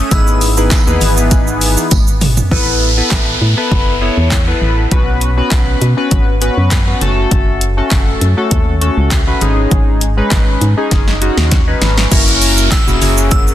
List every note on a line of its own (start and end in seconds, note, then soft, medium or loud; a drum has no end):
0.00 0.12 D#6 loud
0.11 0.75 G#1 loud
0.11 2.49 E3 medium
0.11 0.49 B3 medium
0.11 2.49 B3 medium
0.11 0.49 D#4 medium
0.11 0.49 E4 medium
0.11 0.49 G#4 medium
0.11 0.50 B4 medium
0.11 1.87 E6 loud
0.11 kick loud
0.11 closed hi-hat medium
0.11 tambourine medium
0.11 shaker medium
0.27 shaker soft
0.41 open hi-hat medium
0.41 tambourine soft
0.41 shaker medium
0.57 0.81 B3 medium
0.57 0.81 D#4 medium
0.57 0.82 E4 medium
0.57 0.82 G#4 medium
0.57 0.82 B4 medium
0.57 shaker medium
0.71 kick loud
0.71 snare loud
0.71 clap loud
0.71 closed hi-hat medium
0.71 tambourine medium
0.71 shaker medium
0.87 0.99 D#2 medium
0.87 1.87 B3 medium
0.87 1.87 D#4 medium
0.87 1.87 E4 medium
0.87 1.87 G#4 medium
0.87 1.87 B4 loud
0.87 shaker medium
1.01 1.77 G#1 medium
1.01 open hi-hat medium
1.01 tambourine medium
1.01 shaker medium
1.17 shaker medium
1.31 kick loud
1.31 closed hi-hat medium
1.31 tambourine soft
1.31 shaker medium
1.47 shaker soft
1.61 open hi-hat medium
1.61 tambourine medium
1.61 shaker medium
1.77 shaker medium
1.91 2.42 G#1 loud
1.91 kick loud
1.91 closed hi-hat medium
1.91 high tom medium
1.91 tambourine medium
1.91 shaker medium
2.07 shaker medium
2.21 mid tom medium
2.21 open hi-hat medium
2.21 tambourine soft
2.21 shaker medium
2.37 floor tom loud
2.37 shaker medium
2.51 3.02 A1 loud
2.51 2.89 B3 medium
2.51 2.89 E4 medium
2.51 2.89 A4 medium
2.51 2.90 B4 loud
2.51 kick loud
2.51 downlifter medium
2.97 3.47 B3 medium
2.97 3.47 E4 medium
2.97 3.47 A4 medium
2.97 3.47 B4 loud
3.11 3.37 A1 medium
3.11 kick loud
3.11 snare medium
3.11 clap loud
3.42 3.55 A2 loud
3.57 3.94 B3 medium
3.57 3.94 E4 medium
3.57 3.94 A4 medium
3.57 3.95 B4 loud
3.72 4.10 F#1 loud
3.72 kick loud
4.01 4.39 B3 medium
4.01 4.39 E4 medium
4.01 4.39 A4 medium
4.01 4.40 C#5 loud
4.17 4.54 E2 medium
4.31 kick loud
4.31 snare medium
4.31 clap loud
4.47 4.84 B3 medium
4.47 4.84 E4 medium
4.47 4.84 A4 medium
4.47 4.84 B4 loud
4.62 4.87 A1 medium
4.91 5.42 B1 loud
4.91 5.29 B3 medium
4.91 5.29 C#4 medium
4.91 5.29 F#4 medium
4.91 5.30 B4 loud
4.91 kick loud
4.91 closed hi-hat medium
5.21 closed hi-hat medium
5.37 5.87 B3 medium
5.37 5.87 C#4 medium
5.37 5.87 F#4 medium
5.37 5.87 B4 loud
5.51 5.77 B1 medium
5.51 kick loud
5.51 snare medium
5.51 clap loud
5.51 closed hi-hat medium
5.81 5.95 B2 loud
5.81 closed hi-hat soft
5.97 6.34 B3 medium
5.97 6.34 C#4 medium
5.97 6.34 F#4 medium
5.97 6.35 B4 loud
6.11 6.50 G#1 loud
6.11 kick loud
6.11 closed hi-hat medium
6.41 6.79 B3 medium
6.41 6.79 C#4 medium
6.41 6.79 F#4 medium
6.41 6.79 B4 loud
6.41 closed hi-hat medium
6.57 6.94 F#2 medium
6.71 kick loud
6.71 snare medium
6.71 clap loud
6.71 closed hi-hat medium
6.87 7.01 B3 medium
6.87 7.00 C#4 medium
6.87 7.00 F#4 medium
6.87 7.02 B4 medium
7.01 7.27 F#1 medium
7.01 7.64 A3 loud
7.01 7.64 C#4 medium
7.01 7.64 F#4 medium
7.01 7.64 A4 loud
7.01 closed hi-hat medium
7.31 7.82 F#1 loud
7.31 kick loud
7.31 closed hi-hat medium
7.61 closed hi-hat medium
7.77 8.27 A3 medium
7.77 8.27 C#4 medium
7.77 8.27 F#4 medium
7.77 8.27 A4 loud
7.91 8.17 F#1 medium
7.91 kick loud
7.91 snare loud
7.91 clap loud
7.91 closed hi-hat medium
8.21 8.35 F#2 loud
8.21 closed hi-hat medium
8.37 8.74 A3 medium
8.37 8.74 C#4 medium
8.37 8.74 F#4 medium
8.37 8.75 A4 loud
8.51 8.90 D#2 loud
8.51 kick loud
8.51 closed hi-hat medium
8.81 9.19 A3 medium
8.81 9.19 C#4 medium
8.81 9.19 F#4 medium
8.81 9.20 A4 loud
8.81 closed hi-hat medium
8.97 9.34 C#2 loud
9.11 kick loud
9.11 snare medium
9.11 clap loud
9.11 closed hi-hat medium
9.27 9.41 A3 medium
9.27 9.40 C#4 medium
9.27 9.41 F#4 medium
9.27 9.42 B4 loud
9.41 9.67 G#1 medium
9.41 10.04 G#3 loud
9.41 10.04 C#4 medium
9.41 10.04 D#4 medium
9.41 10.04 G#4 loud
9.41 closed hi-hat soft
9.71 10.22 G#1 loud
9.71 kick loud
9.71 closed hi-hat medium
10.01 closed hi-hat medium
10.17 10.67 G#3 medium
10.17 10.67 C#4 medium
10.17 10.67 D#4 medium
10.17 10.67 B4 loud
10.31 10.57 G#1 medium
10.31 kick loud
10.31 snare medium
10.31 clap loud
10.31 closed hi-hat medium
10.61 10.75 G#2 loud
10.61 closed hi-hat soft
10.77 11.14 G#3 medium
10.77 11.14 C#4 medium
10.77 11.14 D#4 medium
10.77 11.15 G#4 loud
10.91 11.30 F#1 loud
10.91 kick loud
10.91 snare medium
10.91 closed hi-hat medium
11.08 snare medium
11.21 11.59 G#3 medium
11.21 11.59 C#4 medium
11.21 11.59 D#4 medium
11.21 11.60 F#4 loud
11.21 closed hi-hat medium
11.37 11.74 D#2 loud
11.37 snare medium
11.51 kick loud
11.51 snare medium
11.51 closed hi-hat medium
11.67 12.04 G#3 medium
11.67 12.04 C#4 medium
11.67 12.04 D#4 medium
11.67 12.05 B4 medium
11.82 12.07 G#1 medium
11.82 snare medium
11.82 closed hi-hat medium
11.97 snare medium
12.11 12.75 F#1 loud
12.11 12.74 A#3 medium
12.11 12.74 C#4 medium
12.11 12.74 E4 medium
12.11 12.74 F#4 medium
12.11 12.74 A#4 loud
12.11 kick loud
12.11 closed hi-hat medium
12.11 crash loud
12.11 tambourine medium
12.11 downlifter medium
12.11 shaker medium
12.27 shaker soft
12.41 open hi-hat medium
12.41 tambourine soft
12.41 shaker medium
12.57 shaker medium
12.71 13.27 E6 loud
12.71 kick loud
12.71 snare loud
12.71 clap loud
12.71 closed hi-hat medium
12.71 tambourine medium
12.71 shaker medium
12.87 12.99 E1 medium
12.87 12.99 A#3 medium
12.87 12.99 C#4 medium
12.87 12.99 E4 medium
12.87 12.99 F#4 medium
12.87 12.99 G#4 medium
12.87 shaker medium
13.01 13.54 F#1 medium
13.01 13.54 A#3 medium
13.01 13.54 C#4 medium
13.01 13.54 E4 medium
13.01 13.54 F#4 medium
13.01 13.54 G#4 medium
13.01 open hi-hat medium
13.01 tambourine medium
13.01 shaker medium
13.18 shaker medium
13.31 13.54 E6 loud
13.31 kick loud
13.31 closed hi-hat medium
13.31 shaker medium
13.48 shaker soft